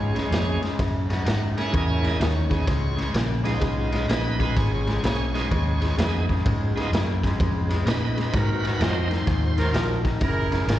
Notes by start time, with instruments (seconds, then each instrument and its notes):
Already playing: fingered electric bass G#2, clean electric guitar C#3 G#3, tonewheel organ G#3 C#4
0.15 clean electric guitar C#3 G#3, snare, ride
0.31 fingered electric bass F2, clean electric guitar C#3 A#3, snare, ride
0.62 clean electric guitar C#3 G#3, muted fingered electric bass stroke, snare, ride
0.78 clean electric guitar F#2 C#3, fingered electric bass F#2, kick, snare, ride
1.10 clean electric guitar F#2 C#3, tonewheel organ F#5, snare, ride
1.25 clean electric guitar F#2 D#3, fingered electric bass G#2, snare, ride
1.56 clean electric guitar F#2 C#3, tonewheel organ A#3 C#4 E4 G#4, snare, ride
1.61 tonewheel organ F#5
1.73 fingered electric bass E2, clean electric guitar F#2 C#3, kick, ride
1.77 tonewheel organ D#5
1.90 tonewheel organ C#5
2.03 clean electric guitar F#2 C#3, snare, ride
2.07 tonewheel organ D#5
2.19 fingered electric bass D#2, clean electric guitar F#2 D#3, tonewheel organ C#5, snare, ride
2.50 clean electric guitar F#2 C#3, tonewheel organ G#3 B3 D#4 G#4, kick, snare, ride
2.67 fingered electric bass C#2, clean electric guitar C#3 G#3, kick, snare, ride
2.96 clean electric guitar C#3 G#3, snare, ride
3.14 fingered electric bass A#1, clean electric guitar C#3 A#3, snare, ride
3.43 clean electric guitar C#3 G#3, tonewheel organ G#3 B3 D#4 F4, snare, ride
3.61 fingered electric bass B1, clean electric guitar C#3 G#3, kick, snare, ride
3.92 clean electric guitar C#3 G#3, snare, ride
4.08 fingered electric bass A#1, clean electric guitar C#3 A#3, tonewheel organ A#4 B4, snare, ride
4.12 tonewheel organ D#4
4.27 tonewheel organ D#4 B4
4.39 clean electric guitar C#3 G#3, tonewheel organ G#3 B3 D#4 F4, kick, snare, ride
4.44 tonewheel organ B4
4.56 fingered electric bass G#1, clean electric guitar C#3 G#3, tonewheel organ G#4 C#5, kick, snare, ride
4.75 tonewheel organ G#4 C#5
4.87 clean electric guitar C#3 G#3, tonewheel organ G#4 C#5, snare, ride
5.03 fingered electric bass B1, clean electric guitar C#3 A#3, tonewheel organ G#4 C#5, snare, ride
5.34 clean electric guitar C#3 G#3, tonewheel organ G#3 B3 D#4 F4, snare, ride
5.51 fingered electric bass D#2, clean electric guitar C#3 G#3, kick, ride
5.81 clean electric guitar C#3 G#3, snare, ride
5.98 fingered electric bass F2, clean electric guitar C#3 A#3, tonewheel organ G#3 B3 D#4 G#4, snare, ride
6.29 clean electric guitar C#3 G#3, kick, snare, ride
6.46 fingered electric bass G#2, clean electric guitar C#3 G#3, kick, ride
6.76 clean electric guitar C#3 G#3, tonewheel organ G#3 B3 D#4 F4, snare, ride
6.92 fingered electric bass F#2, clean electric guitar C#3 A#3, snare, ride
7.23 clean electric guitar C#3 G#3, kick, snare, ride
7.39 fingered electric bass F2, clean electric guitar C#3 G#3, kick, ride
7.69 clean electric guitar C#3 G#3, snare, ride
7.86 fingered electric bass A#2, clean electric guitar C#3 A#3, tonewheel organ D#4 A#4, snare, ride
7.90 tonewheel organ B4
8.04 tonewheel organ D#4 B4
8.17 clean electric guitar C#3 G#3, snare, ride
8.22 tonewheel organ D#4 B4
8.32 clean electric guitar G#2 D#3, fingered electric bass G#2, horn section C4 F#4 A#4, tonewheel organ F#4, kick, snare, ride
8.36 tonewheel organ B4
8.53 tonewheel organ F#4 B4
8.62 clean electric guitar G#2 D#3, snare, ride
8.67 tonewheel organ F#4 B4
8.79 fingered electric bass F2, clean electric guitar G#2 F3, tonewheel organ F#3 A#3 C4 D#4, snare, ride
8.84 tonewheel organ C5
9.10 clean electric guitar G#2 D#3, snare, ride
9.27 fingered electric bass D#2, clean electric guitar G#2 D#3, kick, snare, ride
9.57 clean electric guitar G#2 D#3, horn section C4 F#4 A#4, snare, ride
9.73 fingered electric bass A#1, clean electric guitar G#2 F3, snare, ride
10.04 clean electric guitar G#2 D#3, kick, snare, ride
10.21 fingered electric bass F#1, clean electric guitar F#2 C#3, horn section E4 G#4 A#4, kick, ride
10.52 clean electric guitar F#2 C#3, snare, ride
10.68 fingered electric bass G#1, clean electric guitar F#2 D#3, snare, ride